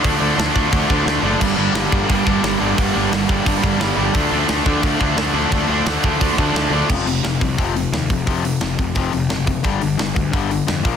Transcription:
<<
  \new Staff \with { instrumentName = "Distorted electric guitar" } { \clef bass \time 4/4 \key g \minor \tempo 4 = 175 <d a d'>8 <d a d'>8 <d a d'>8 <d a d'>8 <d a d'>8 <d a d'>8 <d a d'>8 <d a d'>8 | <g, d g>8 <g, d g>8 <g, d g>8 <g, d g>8 <g, d g>8 <g, d g>8 <g, d g>8 <g, d g>8 | <g, d g>8 <g, d g>8 <g, d g>8 <g, d g>8 <g, d g>8 <g, d g>8 <g, d g>8 <g, d g>8 | <d a d'>8 <d a d'>8 <d a d'>8 <d a d'>8 <d a d'>8 <d a d'>8 <d a d'>8 <d a d'>8 |
<d a d'>8 <d a d'>8 <d a d'>8 <d a d'>8 <d a d'>8 <d a d'>8 <d a d'>8 <d a d'>8 | r1 | r1 | r1 | }
  \new Staff \with { instrumentName = "Overdriven electric guitar" } { \clef bass \time 4/4 \key g \minor <d a d'>8 <d a d'>8 <d a d'>8 <d a d'>8 <d a d'>8 <d a d'>8 <d a d'>8 <d a d'>8 | <g, d g>8 <g, d g>8 <g, d g>8 <g, d g>8 <g, d g>8 <g, d g>8 <g, d g>8 <g, d g>8 | <g, d g>8 <g, d g>8 <g, d g>8 <g, d g>8 <g, d g>8 <g, d g>8 <g, d g>8 <g, d g>8 | <d a d'>8 <d a d'>8 <d a d'>8 <d a d'>8 <d a d'>8 <d a d'>8 <d a d'>8 <d a d'>8 |
<d a d'>8 <d a d'>8 <d a d'>8 <d a d'>8 <d a d'>8 <d a d'>8 <d a d'>8 <d a d'>8 | r1 | r1 | r1 | }
  \new Staff \with { instrumentName = "Distorted electric guitar" } { \clef bass \time 4/4 \key g \minor <d f a d'>8 <d f a d'>8 <d f a d'>8 <d f a d'>8 <d f a d'>8 <d f a d'>8 <d f a d'>8 <d f a d'>8 | <g, d g bes d'>8 <g, d g bes d'>8 <g, d g bes d'>8 <g, d g bes d'>8 <g, d g bes d'>8 <g, d g bes d'>8 <g, d g bes d'>8 <g, d g bes d'>8 | <g, d g bes d'>8 <g, d g bes d'>8 <g, d g bes d'>8 <g, d g bes d'>8 <g, d g bes d'>8 <g, d g bes d'>8 <g, d g bes d'>8 <g, d g bes d'>8 | <d f a d'>8 <d f a d'>8 <d f a d'>8 <d f a d'>8 <d f a d'>8 <d f a d'>8 <d f a d'>8 <d f a d'>8 |
<d f a d'>8 <d f a d'>8 <d f a d'>8 <d f a d'>8 <d f a d'>8 <d f a d'>8 <d f a d'>8 <d f a d'>8 | <f, c f>8 <f, c>8 <f, c>8 <f, c>8 <f, c f>8 <f, c>8 <f, c>8 <f, c>8 | <f, c f>8 <f, c>8 <f, c>8 <f, c>8 <f, c f>8 <f, c>8 <f, c>8 <f, c>8 | <g, d g>8 <g, d>8 <g, d>8 <g, d>8 <g, d g>8 <g, d>8 <g, d>8 <bes, f bes>8 | }
  \new Staff \with { instrumentName = "Picked electric bass" } { \clef bass \time 4/4 \key g \minor d,8 d,8 d,8 d,8 d,8 d,8 d,8 fis,,8 | g,,8 g,,8 g,,8 g,,8 g,,8 g,,8 g,,8 g,,8 | g,,8 g,,8 g,,8 g,,8 g,,8 g,,8 g,,8 g,,8 | d,8 d,8 d,8 d,8 d,8 d,8 d,8 d,8 |
d,8 d,8 d,8 d,8 d,8 d,8 d,8 d,8 | f,,8 f,,8 f,,8 c,8 f,,4 ees,8 f,,8 | f,,4 f,,8 f,,8 f,,8 f,,8 fis,,4 | g,,8 g,,8 g,,8 d,8 g,,4 f,8 bes,,8 | }
  \new DrumStaff \with { instrumentName = "Drums" } \drummode { \time 4/4 <hho bd>4 <hho sn>8 bd8 <hho bd>8 bd8 <hho sn>4 | <cymc bd>4 <hho sn>8 bd8 <hho bd>8 bd8 <hho sn>4 | <hho bd>4 <hho sn>8 bd8 <hho bd>8 bd8 <hho sn>4 | <hho bd>4 <hho sn>8 bd8 <hho bd>8 bd8 <hho sn>4 |
<hho bd>4 <hho sn>8 bd8 <hho bd>8 bd8 <hho sn>4 | <cymc bd>8 hho8 <hho sn>8 <hho bd>8 <hho bd>8 hho8 <hho sn>8 <hho bd>8 | <hho bd>8 hho8 <hho sn>8 <hho bd>8 <hho bd>8 hho8 <hho sn>8 <hho bd>8 | <hho bd>8 hho8 <hho sn>8 <hho bd>8 <hho bd>8 hho8 <hho sn>8 <hho bd>8 | }
>>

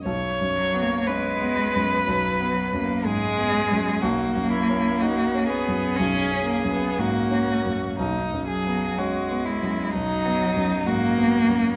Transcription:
<<
  \new Staff \with { instrumentName = "Violin" } { \time 4/4 \key b \major \tempo 4 = 61 cis''4 b'2 gis'4 | fis'8 e'8 fis'8 gis'4. fis'4 | dis'8 gis'8 fis'8 e'8 dis'4 fis'4 | }
  \new Staff \with { instrumentName = "Cello" } { \time 4/4 \key b \major r8 fis16 ais16 gis4 fis8. ais16 gis4 | ais4. b8 cis'8 ais16 b16 ais4 | r8 fis8 gis4 fis4 ais4 | }
  \new Staff \with { instrumentName = "Grand piano" } { \clef bass \time 4/4 \key b \major \tuplet 3/2 { b,,8 fis,8 b8 cis'8 b8 fis,8 b,,8 b8 fis,8 gis,8 b8 fis,8 } | \tuplet 3/2 { b,,8 fis,8 cis'8 dis'8 cis'8 fis,8 b,,8 cis'8 fis,8 gis,8 cis'8 fis,8 } | \tuplet 3/2 { b,,8 fis,8 b8 cis'8 b8 fis,8 b,,8 b8 fis,8 gis,8 b8 fis,8 } | }
>>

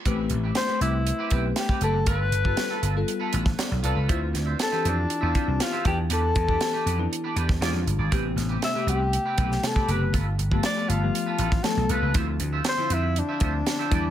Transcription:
<<
  \new Staff \with { instrumentName = "Alto saxophone" } { \time 4/4 \key d \dorian \tempo 4 = 119 r4 c''8 e'4. g'8 a'8 | b'2 r2 | r4 a'8 d'4. f'8 g'8 | a'2 r2 |
r4 e''8 g'4. a'8 b'8 | r4 d''8 f'4. a'8 b'8 | r4 c''8 e'8 d'2 | }
  \new Staff \with { instrumentName = "Clean electric guitar" } { \time 4/4 \key d \dorian <c' g' b'>8 r16 <c' g' b'>16 r16 <c' g' b'>16 <c' g' b'>16 r8 <c' g' b'>16 <c' g' b'>16 r8 <c' g' b'>16 <c' g' b'>16 r16 | <f' a' b'>8 r16 <f' a' b'>16 r16 <f' a' b'>16 <f' a' b'>16 r8 <f' a' b'>16 <f' a' b'>16 r8. <f' a' b'>16 <f' a' b'>16 | <f' c'' e''>8 r16 <f' c'' e''>16 r16 <f' c'' e''>16 <f' c'' e''>16 r8 <f' c'' e''>16 <f' c'' e''>16 r8 <f' c'' e''>16 <d' g' b'>16 r16 | <d' g' b'>8 r16 <d' g' b'>16 r16 <d' g' b'>16 <d' g' b'>16 r8 <d' g' b'>16 <d' g' b'>16 r16 <f' gis' d''>8 r16 <f' gis' d''>16 |
<c' g' b'>8 r16 <c' g' b'>16 r16 <c' g' b'>16 <c' g' b'>16 r8 <c' g' b'>16 <c' g' b'>16 r8 <c' g' b'>16 <c' g' b'>16 r16 | <f' a' b'>8 r16 <f' a' b'>16 r16 <f' a' b'>16 <f' a' b'>16 r8 <f' a' b'>16 <f' a' b'>16 r8. <f' a' b'>16 <f' a' b'>16 | <f' c'' e''>8 r16 <f' c'' e''>16 r16 <f' c'' e''>16 <f' c'' e''>16 r8 <f' c'' e''>16 <f' c'' e''>16 r8 <f' c'' e''>16 <g' b' d''>16 r16 | }
  \new Staff \with { instrumentName = "FM electric piano" } { \time 4/4 \key d \dorian << { r1 | r2. <d'' f''>8 <b' d''>8~ | <b' d''>8 r2. r8 | r1 |
r1 | r1 | r1 | } \\ { <a c' g' b'>8. r8 <a c' g' b'>8. r8 <a c' g' b'>8. r16 <a c' g' b'>8 | r8. <g b f' a'>8. r16 <g b f' a'>8. r4. | <c' d' e' f'>8. r8 <e c' d' g'>8. r8 <c' d' e' f'>8. r16 <e b d' f' g'>8~ | <e b d' f' g'>8 r16 <e b d' g'>8. r16 <e b d' e'>8. r8 <e gis d' f'>8. r16 |
<c a b g'>8. r8 <c a b g'>8. r8 <c a b g'>8. r16 <c a b g'>8 | r8. <f a b g'>8. r16 <f a b g'>8. r8 <f a b a'>8. r16 | <d f c' e'>8. r8 <d f c' e'>8. r8 <d f c' e'>8. r16 <d g b e'>8 | } >> }
  \new Staff \with { instrumentName = "Slap bass" } { \clef bass \time 4/4 \key d \dorian a,,8 a,,8 r8 c,8. r16 b,,8 r8 fis,,8 | g,,8 g,,8 r8 g,,8 r8 a,,8 r16 b,,16 c,16 cis,16 | d,8 d,8 r8 f,8 r16 e,16 r16 c,16 r8 e,8 | e,8 e,8 r8 f,8 r8 e,8 e,16 f,16 g,,16 gis,,16 |
a,,8 a,,8 r8 c,8. r16 b,,8 r8 fis,,8 | g,,8 g,,8 r8 g,,8 r8 a,,8 r16 b,,16 c,16 cis,16 | d,8 d,8 r8 f,8. r16 d,8 r8 e,8 | }
  \new DrumStaff \with { instrumentName = "Drums" } \drummode { \time 4/4 <hh bd>8 hh8 <hh sn>8 hh8 hh8 <hh bd>8 <hh sn>16 bd16 hh8 | <hh bd>8 hh16 bd16 <hh sn>8 hh8 hh8 hh16 <bd sn>16 <hh sn>8 hh8 | <hh bd>8 <hh sn>8 <hh sn>8 hh8 hh8 <hh bd>8 <hh sn>8 <hh bd>8 | hh8 <hh bd>16 bd16 <hh sn>8 hh8 hh8 hh16 <bd sn>16 <hh sn>8 hh8 |
<hh bd>8 <hh sn>8 <hh sn>8 hh8 hh8 <hh bd>16 sn16 <hh sn>16 bd16 hh8 | <hh bd>8 hh16 bd16 <hh sn>8 hh8 hh8 hh16 <bd sn>16 <hh sn>8 hh8 | <hh bd>8 hh8 <hh sn>8 hh8 hh8 <hh bd>8 <hh sn>8 <hh bd>8 | }
>>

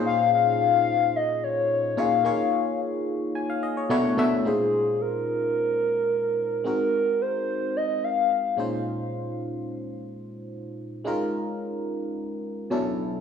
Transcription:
<<
  \new Staff \with { instrumentName = "Soft synth lead" } { \time 4/4 \key bes \minor \tempo 4 = 109 f''8 f''4. ees''8 des''4 f''8~ | f''4 r2. | aes'4 bes'2. | bes'4 c''4 ees''8 f''4 r8 |
r1 | r1 | }
  \new Staff \with { instrumentName = "FM electric piano" } { \time 4/4 \key bes \minor << { r1 | r2 aes''16 f''16 ees''16 des''8 r8. | r1 | r1 |
r1 | r1 | } \\ { <bes, des' ees' f' aes' c''>4 r2 r8 <bes, des' ees' f' aes' des''>8 | <bes ees' f' aes' des''>4. r4. <b, a d' e' fis' cis''>8 <b, a d' e' fis' e''>8 | <bes, aes des' ees' f' c''>1 | <aes c' ees' ges' bes'>2.~ <aes c' ees' ges' bes'>8 <bes, aes des' ees' f' c''>8~ |
<bes, aes des' ees' f' c''>2.~ <bes, aes des' ees' f' c''>8 r8 | <aes des' ees' f' bes'>2. <b, fis cis' d' e' a'>4 | } >> }
>>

